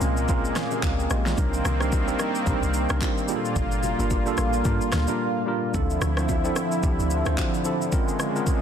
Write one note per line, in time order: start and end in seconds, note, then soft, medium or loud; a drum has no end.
0.00 0.50 C2 medium
0.00 1.35 A#2 medium
0.00 0.27 G#3 medium
0.00 1.36 G#3 medium
0.00 1.36 A#3 medium
0.00 0.28 C4 medium
0.00 0.29 C#4 medium
0.00 0.29 F4 medium
0.00 0.30 A#4 loud
0.00 low bongo medium
0.00 shaker medium
0.17 shaker medium
0.27 0.62 G#3 medium
0.27 0.62 C4 medium
0.27 0.62 C#4 medium
0.27 0.55 F4 medium
0.27 0.56 A#4 loud
0.27 kick loud
0.27 low conga medium
0.27 shaker medium
0.45 shaker medium
0.56 0.71 C#5 medium
0.56 cross-stick medium
0.56 snare medium
0.56 shaker medium
0.71 0.83 G4 medium
0.71 0.83 D#5 medium
0.71 low bongo medium
0.71 shaker medium
0.83 1.08 C#2 loud
0.83 0.99 G#4 medium
0.83 0.98 F5 medium
0.83 kick loud
0.83 clap loud
0.83 high bongo medium
0.83 shaker medium
0.99 1.10 A#4 medium
0.99 1.10 G5 medium
0.99 shaker soft
1.10 1.35 A#1 medium
1.10 1.26 G4 medium
1.10 1.26 D#5 medium
1.10 cross-stick medium
1.10 shaker medium
1.26 1.53 F4 medium
1.26 1.52 C#5 medium
1.26 snare medium
1.26 shaker medium
1.37 1.62 C2 loud
1.37 3.27 D#3 medium
1.37 1.71 G3 medium
1.37 3.27 A#3 medium
1.37 1.71 C4 medium
1.37 3.27 C4 medium
1.37 1.71 D4 medium
1.37 1.72 D#4 medium
1.37 1.72 A#4 loud
1.37 kick loud
1.37 low conga medium
1.37 shaker medium
1.54 shaker medium
1.65 2.14 C2 loud
1.65 cross-stick loud
1.65 high bongo soft
1.65 low bongo soft
1.65 low conga medium
1.65 shaker medium
1.80 2.01 G3 medium
1.80 2.02 C4 medium
1.80 2.02 D4 medium
1.80 2.02 D#4 medium
1.80 2.02 A#4 medium
1.80 cross-stick loud
1.80 shaker medium
1.92 kick medium
1.92 high bongo medium
1.92 low bongo medium
1.92 shaker medium
2.07 2.39 G3 medium
2.07 2.40 C4 medium
2.07 2.40 D4 medium
2.07 2.40 D#4 medium
2.07 2.40 A#4 loud
2.07 shaker medium
2.19 cross-stick medium
2.19 low bongo medium
2.19 shaker medium
2.35 shaker medium
2.46 2.61 A#1 loud
2.46 2.80 G3 medium
2.46 2.80 C4 medium
2.46 2.80 D4 medium
2.46 2.81 D#4 medium
2.46 2.81 A#4 loud
2.46 kick loud
2.46 low conga medium
2.46 shaker medium
2.63 2.87 C2 medium
2.63 shaker medium
2.74 shaker medium
2.89 3.00 C2 loud
2.89 3.21 G3 medium
2.89 3.22 C4 medium
2.89 3.22 D4 medium
2.89 3.22 D#4 medium
2.89 3.22 A#4 loud
2.89 cross-stick loud
2.89 low bongo medium
2.89 shaker medium
3.01 kick loud
3.01 clap loud
3.01 high bongo medium
3.01 shaker medium
3.18 shaker medium
3.28 5.72 A#2 medium
3.28 3.83 G3 medium
3.28 3.83 A#3 medium
3.28 5.72 A#3 medium
3.28 3.83 D4 medium
3.28 5.72 F4 medium
3.28 3.84 F4 medium
3.28 3.37 G#4 medium
3.28 shaker medium
3.36 3.87 A4 medium
3.45 shaker soft
3.56 3.95 G1 loud
3.56 kick loud
3.56 low conga medium
3.56 shaker medium
3.72 shaker medium
3.83 high bongo soft
3.83 low bongo soft
3.83 low conga medium
3.83 shaker medium
3.98 4.34 G1 loud
3.98 4.20 G3 medium
3.98 4.20 A#3 medium
3.98 4.20 D4 medium
3.98 4.20 F4 medium
3.98 4.21 A#4 medium
3.98 shaker medium
4.10 kick loud
4.10 high bongo medium
4.10 low bongo medium
4.10 shaker medium
4.26 4.58 G3 medium
4.26 4.58 A#3 medium
4.26 4.58 D4 medium
4.26 4.59 F4 medium
4.26 4.59 A4 loud
4.26 shaker medium
4.37 4.62 A1 medium
4.37 cross-stick medium
4.37 low bongo medium
4.37 shaker medium
4.53 shaker medium
4.64 4.79 G2 loud
4.64 4.98 G3 medium
4.64 4.99 A#3 medium
4.64 4.99 D4 medium
4.64 4.99 F4 medium
4.64 4.99 A#4 loud
4.64 kick loud
4.64 low conga medium
4.64 shaker medium
4.81 shaker medium
4.92 5.07 D2 medium
4.92 cross-stick loud
4.92 snare medium
4.92 shaker medium
5.07 5.40 G3 medium
5.07 5.40 A#3 medium
5.07 5.40 D4 medium
5.07 5.40 F4 medium
5.07 5.41 A#4 medium
5.07 low bongo medium
5.07 shaker medium
5.46 5.69 G3 medium
5.46 5.69 A#3 medium
5.46 5.70 D4 medium
5.46 5.70 F4 medium
5.46 5.70 A#4 medium
5.73 5.99 D2 loud
5.73 8.62 D3 medium
5.73 6.07 F3 medium
5.73 7.90 F3 medium
5.73 6.08 C4 medium
5.73 6.08 D4 medium
5.73 7.90 E4 medium
5.73 6.08 E4 medium
5.73 6.08 A4 loud
5.73 kick loud
5.73 low conga medium
5.73 shaker medium
5.90 shaker medium
6.02 6.50 D2 loud
6.02 cross-stick loud
6.02 high bongo soft
6.02 low bongo soft
6.02 low conga medium
6.02 shaker medium
6.17 6.38 F3 medium
6.17 6.38 C4 medium
6.17 6.38 D4 medium
6.17 6.39 E4 medium
6.17 6.39 C5 medium
6.17 cross-stick loud
6.17 shaker medium
6.29 kick medium
6.29 high bongo medium
6.29 low bongo medium
6.29 shaker medium
6.44 6.76 F3 medium
6.44 6.76 C4 medium
6.44 6.76 D4 medium
6.44 6.77 E4 medium
6.44 6.77 A4 loud
6.44 shaker medium
6.56 cross-stick medium
6.56 low bongo medium
6.56 shaker medium
6.72 shaker medium
6.82 6.97 C2 medium
6.82 7.16 F3 medium
6.82 7.17 C4 medium
6.82 7.17 D4 medium
6.82 7.17 E4 medium
6.82 7.17 G4 medium
6.82 kick loud
6.82 low conga medium
6.82 shaker medium
6.99 7.23 D2 medium
6.99 shaker medium
7.10 shaker medium
7.25 7.36 D2 medium
7.25 7.58 F3 medium
7.25 7.58 C4 medium
7.25 7.58 D4 medium
7.25 7.58 E4 medium
7.25 7.59 C5 loud
7.25 cross-stick loud
7.25 low bongo medium
7.25 shaker medium
7.38 kick loud
7.38 clap loud
7.38 high bongo medium
7.38 shaker medium
7.54 shaker soft
7.64 7.87 F3 medium
7.64 7.88 C4 medium
7.64 7.88 D4 medium
7.64 7.88 E4 medium
7.64 7.88 A4 medium
7.64 shaker loud
7.82 shaker medium
7.92 8.62 C#3 medium
7.92 8.26 G#3 medium
7.92 8.62 G#3 medium
7.92 8.26 C4 medium
7.92 8.26 C#4 medium
7.92 8.26 F4 medium
7.92 8.26 A#4 medium
7.92 kick loud
7.92 shaker medium
8.08 shaker medium
8.20 cross-stick medium
8.20 shaker medium
8.34 8.56 G#3 medium
8.34 8.56 C4 medium
8.34 8.56 C#4 medium
8.34 8.57 F4 medium
8.34 8.57 A#4 loud
8.34 shaker medium
8.47 kick medium
8.47 shaker medium